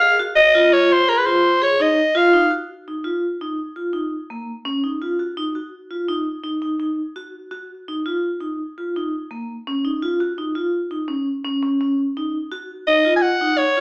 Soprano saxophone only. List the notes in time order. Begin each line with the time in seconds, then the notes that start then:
Already playing: F5
0.36 D#5
0.73 C#5
0.92 C5
1.09 A#4
1.18 B4
1.26 C5
1.63 C#5
1.82 D#5
2.17 F5
12.87 D#5
13.16 G#5
13.22 F#5
13.58 C#5